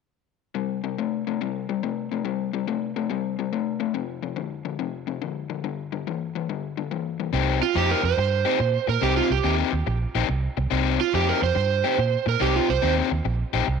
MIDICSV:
0, 0, Header, 1, 5, 480
1, 0, Start_track
1, 0, Key_signature, -3, "minor"
1, 0, Tempo, 423430
1, 621, Time_signature, 4, 2, 24, 8
1, 15644, End_track
2, 0, Start_track
2, 0, Title_t, "Electric slide guitar"
2, 0, Program_c, 0, 29
2, 8645, Note_on_c, 0, 65, 84
2, 8797, Note_off_c, 0, 65, 0
2, 8815, Note_on_c, 0, 67, 85
2, 8961, Note_off_c, 0, 67, 0
2, 8968, Note_on_c, 0, 70, 75
2, 9118, Note_off_c, 0, 70, 0
2, 9127, Note_on_c, 0, 72, 83
2, 10051, Note_off_c, 0, 72, 0
2, 10080, Note_on_c, 0, 70, 69
2, 10232, Note_off_c, 0, 70, 0
2, 10236, Note_on_c, 0, 67, 69
2, 10389, Note_off_c, 0, 67, 0
2, 10393, Note_on_c, 0, 65, 76
2, 10548, Note_off_c, 0, 65, 0
2, 10560, Note_on_c, 0, 67, 75
2, 10814, Note_off_c, 0, 67, 0
2, 12478, Note_on_c, 0, 65, 94
2, 12627, Note_off_c, 0, 65, 0
2, 12644, Note_on_c, 0, 67, 93
2, 12790, Note_off_c, 0, 67, 0
2, 12799, Note_on_c, 0, 70, 89
2, 12947, Note_off_c, 0, 70, 0
2, 12963, Note_on_c, 0, 72, 88
2, 13882, Note_off_c, 0, 72, 0
2, 13928, Note_on_c, 0, 70, 81
2, 14070, Note_off_c, 0, 70, 0
2, 14074, Note_on_c, 0, 67, 78
2, 14222, Note_off_c, 0, 67, 0
2, 14237, Note_on_c, 0, 65, 73
2, 14383, Note_off_c, 0, 65, 0
2, 14396, Note_on_c, 0, 72, 90
2, 14646, Note_off_c, 0, 72, 0
2, 15644, End_track
3, 0, Start_track
3, 0, Title_t, "Overdriven electric guitar"
3, 0, Program_c, 1, 29
3, 621, Note_on_c, 1, 48, 62
3, 625, Note_on_c, 1, 55, 69
3, 911, Note_off_c, 1, 48, 0
3, 913, Note_off_c, 1, 55, 0
3, 949, Note_on_c, 1, 48, 62
3, 954, Note_on_c, 1, 55, 57
3, 1091, Note_off_c, 1, 48, 0
3, 1093, Note_off_c, 1, 55, 0
3, 1116, Note_on_c, 1, 48, 72
3, 1121, Note_on_c, 1, 57, 66
3, 1399, Note_off_c, 1, 48, 0
3, 1402, Note_off_c, 1, 57, 0
3, 1441, Note_on_c, 1, 48, 69
3, 1446, Note_on_c, 1, 57, 69
3, 1577, Note_off_c, 1, 48, 0
3, 1580, Note_off_c, 1, 57, 0
3, 1599, Note_on_c, 1, 48, 62
3, 1605, Note_on_c, 1, 55, 67
3, 1882, Note_off_c, 1, 48, 0
3, 1885, Note_off_c, 1, 55, 0
3, 1917, Note_on_c, 1, 48, 51
3, 1920, Note_on_c, 1, 55, 67
3, 2057, Note_off_c, 1, 48, 0
3, 2058, Note_off_c, 1, 55, 0
3, 2077, Note_on_c, 1, 48, 67
3, 2079, Note_on_c, 1, 57, 69
3, 2362, Note_off_c, 1, 48, 0
3, 2363, Note_off_c, 1, 57, 0
3, 2399, Note_on_c, 1, 48, 61
3, 2407, Note_on_c, 1, 57, 65
3, 2534, Note_off_c, 1, 48, 0
3, 2542, Note_off_c, 1, 57, 0
3, 2548, Note_on_c, 1, 48, 65
3, 2553, Note_on_c, 1, 55, 74
3, 2838, Note_off_c, 1, 48, 0
3, 2841, Note_off_c, 1, 55, 0
3, 2873, Note_on_c, 1, 48, 59
3, 2882, Note_on_c, 1, 55, 65
3, 3016, Note_off_c, 1, 48, 0
3, 3020, Note_off_c, 1, 55, 0
3, 3034, Note_on_c, 1, 48, 71
3, 3038, Note_on_c, 1, 57, 74
3, 3322, Note_off_c, 1, 48, 0
3, 3324, Note_off_c, 1, 57, 0
3, 3358, Note_on_c, 1, 48, 65
3, 3361, Note_on_c, 1, 57, 76
3, 3497, Note_off_c, 1, 48, 0
3, 3501, Note_off_c, 1, 57, 0
3, 3510, Note_on_c, 1, 48, 66
3, 3518, Note_on_c, 1, 55, 74
3, 3801, Note_off_c, 1, 48, 0
3, 3804, Note_off_c, 1, 55, 0
3, 3840, Note_on_c, 1, 48, 61
3, 3849, Note_on_c, 1, 55, 59
3, 3981, Note_off_c, 1, 48, 0
3, 3985, Note_off_c, 1, 55, 0
3, 3997, Note_on_c, 1, 48, 58
3, 4003, Note_on_c, 1, 57, 78
3, 4285, Note_off_c, 1, 48, 0
3, 4287, Note_off_c, 1, 57, 0
3, 4305, Note_on_c, 1, 48, 53
3, 4313, Note_on_c, 1, 57, 65
3, 4454, Note_off_c, 1, 48, 0
3, 4458, Note_off_c, 1, 57, 0
3, 4467, Note_on_c, 1, 41, 73
3, 4474, Note_on_c, 1, 48, 84
3, 4760, Note_off_c, 1, 41, 0
3, 4764, Note_off_c, 1, 48, 0
3, 4790, Note_on_c, 1, 41, 60
3, 4797, Note_on_c, 1, 48, 62
3, 4930, Note_off_c, 1, 41, 0
3, 4941, Note_off_c, 1, 48, 0
3, 4944, Note_on_c, 1, 41, 68
3, 4949, Note_on_c, 1, 50, 78
3, 5239, Note_off_c, 1, 41, 0
3, 5242, Note_off_c, 1, 50, 0
3, 5270, Note_on_c, 1, 41, 62
3, 5276, Note_on_c, 1, 50, 65
3, 5418, Note_off_c, 1, 41, 0
3, 5420, Note_off_c, 1, 50, 0
3, 5430, Note_on_c, 1, 41, 70
3, 5434, Note_on_c, 1, 48, 70
3, 5722, Note_off_c, 1, 41, 0
3, 5724, Note_off_c, 1, 48, 0
3, 5748, Note_on_c, 1, 41, 54
3, 5756, Note_on_c, 1, 48, 77
3, 5897, Note_off_c, 1, 41, 0
3, 5901, Note_off_c, 1, 48, 0
3, 5913, Note_on_c, 1, 41, 64
3, 5914, Note_on_c, 1, 50, 73
3, 6204, Note_off_c, 1, 41, 0
3, 6205, Note_off_c, 1, 50, 0
3, 6231, Note_on_c, 1, 41, 61
3, 6234, Note_on_c, 1, 50, 63
3, 6379, Note_off_c, 1, 41, 0
3, 6380, Note_off_c, 1, 50, 0
3, 6394, Note_on_c, 1, 43, 65
3, 6398, Note_on_c, 1, 50, 72
3, 6685, Note_off_c, 1, 43, 0
3, 6687, Note_off_c, 1, 50, 0
3, 6715, Note_on_c, 1, 43, 61
3, 6717, Note_on_c, 1, 50, 66
3, 6861, Note_off_c, 1, 43, 0
3, 6862, Note_off_c, 1, 50, 0
3, 6883, Note_on_c, 1, 43, 67
3, 6887, Note_on_c, 1, 52, 74
3, 7169, Note_off_c, 1, 43, 0
3, 7171, Note_off_c, 1, 52, 0
3, 7202, Note_on_c, 1, 43, 65
3, 7209, Note_on_c, 1, 52, 72
3, 7345, Note_off_c, 1, 43, 0
3, 7348, Note_off_c, 1, 52, 0
3, 7362, Note_on_c, 1, 43, 67
3, 7364, Note_on_c, 1, 50, 80
3, 7649, Note_off_c, 1, 43, 0
3, 7650, Note_off_c, 1, 50, 0
3, 7679, Note_on_c, 1, 43, 68
3, 7682, Note_on_c, 1, 50, 69
3, 7823, Note_off_c, 1, 43, 0
3, 7824, Note_off_c, 1, 50, 0
3, 7836, Note_on_c, 1, 43, 68
3, 7838, Note_on_c, 1, 52, 79
3, 8125, Note_off_c, 1, 43, 0
3, 8126, Note_off_c, 1, 52, 0
3, 8158, Note_on_c, 1, 43, 62
3, 8162, Note_on_c, 1, 52, 65
3, 8301, Note_off_c, 1, 52, 0
3, 8302, Note_off_c, 1, 43, 0
3, 8306, Note_on_c, 1, 48, 69
3, 8314, Note_on_c, 1, 60, 73
3, 8319, Note_on_c, 1, 63, 75
3, 8323, Note_on_c, 1, 67, 76
3, 8607, Note_off_c, 1, 67, 0
3, 8613, Note_off_c, 1, 63, 0
3, 8621, Note_off_c, 1, 60, 0
3, 8632, Note_off_c, 1, 48, 0
3, 8785, Note_on_c, 1, 48, 72
3, 8791, Note_on_c, 1, 63, 89
3, 8792, Note_on_c, 1, 60, 82
3, 8796, Note_on_c, 1, 67, 87
3, 9092, Note_off_c, 1, 67, 0
3, 9098, Note_off_c, 1, 63, 0
3, 9102, Note_off_c, 1, 60, 0
3, 9111, Note_off_c, 1, 48, 0
3, 9580, Note_on_c, 1, 67, 80
3, 9589, Note_on_c, 1, 63, 90
3, 9593, Note_on_c, 1, 60, 75
3, 9601, Note_on_c, 1, 48, 74
3, 9730, Note_off_c, 1, 48, 0
3, 9734, Note_off_c, 1, 60, 0
3, 9737, Note_off_c, 1, 63, 0
3, 9738, Note_off_c, 1, 67, 0
3, 10218, Note_on_c, 1, 48, 77
3, 10222, Note_on_c, 1, 60, 80
3, 10228, Note_on_c, 1, 63, 93
3, 10232, Note_on_c, 1, 67, 74
3, 10532, Note_off_c, 1, 67, 0
3, 10535, Note_off_c, 1, 63, 0
3, 10542, Note_off_c, 1, 60, 0
3, 10545, Note_off_c, 1, 48, 0
3, 10699, Note_on_c, 1, 48, 90
3, 10703, Note_on_c, 1, 60, 84
3, 10713, Note_on_c, 1, 63, 94
3, 10713, Note_on_c, 1, 67, 100
3, 11008, Note_off_c, 1, 67, 0
3, 11013, Note_off_c, 1, 63, 0
3, 11017, Note_off_c, 1, 60, 0
3, 11025, Note_off_c, 1, 48, 0
3, 11507, Note_on_c, 1, 67, 77
3, 11509, Note_on_c, 1, 63, 87
3, 11511, Note_on_c, 1, 60, 79
3, 11517, Note_on_c, 1, 48, 76
3, 11639, Note_off_c, 1, 48, 0
3, 11646, Note_off_c, 1, 60, 0
3, 11646, Note_off_c, 1, 67, 0
3, 11647, Note_off_c, 1, 63, 0
3, 12135, Note_on_c, 1, 48, 81
3, 12139, Note_on_c, 1, 60, 79
3, 12143, Note_on_c, 1, 63, 89
3, 12148, Note_on_c, 1, 67, 76
3, 12446, Note_off_c, 1, 67, 0
3, 12450, Note_off_c, 1, 63, 0
3, 12456, Note_off_c, 1, 60, 0
3, 12461, Note_off_c, 1, 48, 0
3, 12623, Note_on_c, 1, 48, 76
3, 12629, Note_on_c, 1, 60, 95
3, 12633, Note_on_c, 1, 63, 95
3, 12635, Note_on_c, 1, 67, 106
3, 12938, Note_off_c, 1, 67, 0
3, 12942, Note_off_c, 1, 63, 0
3, 12943, Note_off_c, 1, 48, 0
3, 12947, Note_off_c, 1, 60, 0
3, 13423, Note_on_c, 1, 67, 97
3, 13427, Note_on_c, 1, 63, 81
3, 13433, Note_on_c, 1, 60, 82
3, 13438, Note_on_c, 1, 48, 72
3, 13570, Note_off_c, 1, 48, 0
3, 13575, Note_off_c, 1, 60, 0
3, 13578, Note_off_c, 1, 63, 0
3, 13582, Note_off_c, 1, 67, 0
3, 14054, Note_on_c, 1, 48, 80
3, 14061, Note_on_c, 1, 60, 75
3, 14065, Note_on_c, 1, 63, 79
3, 14070, Note_on_c, 1, 67, 83
3, 14366, Note_off_c, 1, 67, 0
3, 14368, Note_off_c, 1, 63, 0
3, 14376, Note_off_c, 1, 48, 0
3, 14380, Note_off_c, 1, 60, 0
3, 14533, Note_on_c, 1, 48, 81
3, 14537, Note_on_c, 1, 60, 92
3, 14541, Note_on_c, 1, 63, 85
3, 14542, Note_on_c, 1, 67, 94
3, 14849, Note_off_c, 1, 67, 0
3, 14855, Note_off_c, 1, 48, 0
3, 14855, Note_off_c, 1, 63, 0
3, 14857, Note_off_c, 1, 60, 0
3, 15341, Note_on_c, 1, 63, 81
3, 15342, Note_on_c, 1, 67, 92
3, 15347, Note_on_c, 1, 60, 81
3, 15349, Note_on_c, 1, 48, 69
3, 15481, Note_off_c, 1, 48, 0
3, 15485, Note_off_c, 1, 60, 0
3, 15487, Note_off_c, 1, 63, 0
3, 15493, Note_off_c, 1, 67, 0
3, 15644, End_track
4, 0, Start_track
4, 0, Title_t, "Fingered electric bass"
4, 0, Program_c, 2, 33
4, 8315, Note_on_c, 2, 36, 75
4, 8607, Note_off_c, 2, 36, 0
4, 8792, Note_on_c, 2, 41, 85
4, 8987, Note_off_c, 2, 41, 0
4, 9106, Note_on_c, 2, 41, 76
4, 9206, Note_off_c, 2, 41, 0
4, 9266, Note_on_c, 2, 43, 87
4, 9560, Note_off_c, 2, 43, 0
4, 9746, Note_on_c, 2, 46, 89
4, 9943, Note_off_c, 2, 46, 0
4, 10070, Note_on_c, 2, 46, 91
4, 10168, Note_off_c, 2, 46, 0
4, 10225, Note_on_c, 2, 36, 79
4, 10421, Note_off_c, 2, 36, 0
4, 10546, Note_on_c, 2, 36, 75
4, 10645, Note_off_c, 2, 36, 0
4, 10705, Note_on_c, 2, 39, 98
4, 10901, Note_off_c, 2, 39, 0
4, 11027, Note_on_c, 2, 39, 78
4, 11125, Note_off_c, 2, 39, 0
4, 11188, Note_on_c, 2, 34, 90
4, 11383, Note_off_c, 2, 34, 0
4, 11506, Note_on_c, 2, 34, 84
4, 11604, Note_off_c, 2, 34, 0
4, 11668, Note_on_c, 2, 36, 77
4, 11862, Note_off_c, 2, 36, 0
4, 11987, Note_on_c, 2, 36, 84
4, 12084, Note_off_c, 2, 36, 0
4, 12146, Note_on_c, 2, 36, 77
4, 12437, Note_off_c, 2, 36, 0
4, 12626, Note_on_c, 2, 41, 87
4, 12819, Note_off_c, 2, 41, 0
4, 12947, Note_on_c, 2, 41, 78
4, 13043, Note_off_c, 2, 41, 0
4, 13105, Note_on_c, 2, 43, 91
4, 13395, Note_off_c, 2, 43, 0
4, 13585, Note_on_c, 2, 46, 88
4, 13778, Note_off_c, 2, 46, 0
4, 13905, Note_on_c, 2, 46, 84
4, 14000, Note_off_c, 2, 46, 0
4, 14068, Note_on_c, 2, 36, 84
4, 14260, Note_off_c, 2, 36, 0
4, 14388, Note_on_c, 2, 36, 77
4, 14482, Note_off_c, 2, 36, 0
4, 14547, Note_on_c, 2, 39, 89
4, 14738, Note_off_c, 2, 39, 0
4, 14867, Note_on_c, 2, 39, 74
4, 14961, Note_off_c, 2, 39, 0
4, 15022, Note_on_c, 2, 34, 86
4, 15213, Note_off_c, 2, 34, 0
4, 15343, Note_on_c, 2, 34, 80
4, 15437, Note_off_c, 2, 34, 0
4, 15505, Note_on_c, 2, 36, 86
4, 15644, Note_off_c, 2, 36, 0
4, 15644, End_track
5, 0, Start_track
5, 0, Title_t, "Muted overdriven electric guitar strokes"
5, 8621, Note_on_c, 9, 29, 48
5, 8734, Note_off_c, 9, 29, 0
5, 9106, Note_on_c, 9, 29, 48
5, 9219, Note_off_c, 9, 29, 0
5, 9272, Note_on_c, 9, 29, 39
5, 9385, Note_off_c, 9, 29, 0
5, 9744, Note_on_c, 9, 29, 36
5, 9857, Note_off_c, 9, 29, 0
5, 10059, Note_on_c, 9, 29, 41
5, 10172, Note_off_c, 9, 29, 0
5, 10545, Note_on_c, 9, 29, 42
5, 10659, Note_off_c, 9, 29, 0
5, 11022, Note_on_c, 9, 29, 45
5, 11135, Note_off_c, 9, 29, 0
5, 11183, Note_on_c, 9, 29, 44
5, 11297, Note_off_c, 9, 29, 0
5, 11652, Note_on_c, 9, 29, 43
5, 11766, Note_off_c, 9, 29, 0
5, 11984, Note_on_c, 9, 29, 44
5, 12097, Note_off_c, 9, 29, 0
5, 12459, Note_on_c, 9, 29, 46
5, 12573, Note_off_c, 9, 29, 0
5, 12952, Note_on_c, 9, 29, 58
5, 13065, Note_off_c, 9, 29, 0
5, 13095, Note_on_c, 9, 29, 43
5, 13209, Note_off_c, 9, 29, 0
5, 13584, Note_on_c, 9, 29, 40
5, 13697, Note_off_c, 9, 29, 0
5, 13897, Note_on_c, 9, 29, 43
5, 14010, Note_off_c, 9, 29, 0
5, 14380, Note_on_c, 9, 29, 45
5, 14493, Note_off_c, 9, 29, 0
5, 14862, Note_on_c, 9, 29, 49
5, 14976, Note_off_c, 9, 29, 0
5, 15019, Note_on_c, 9, 29, 44
5, 15132, Note_off_c, 9, 29, 0
5, 15494, Note_on_c, 9, 29, 37
5, 15608, Note_off_c, 9, 29, 0
5, 15644, End_track
0, 0, End_of_file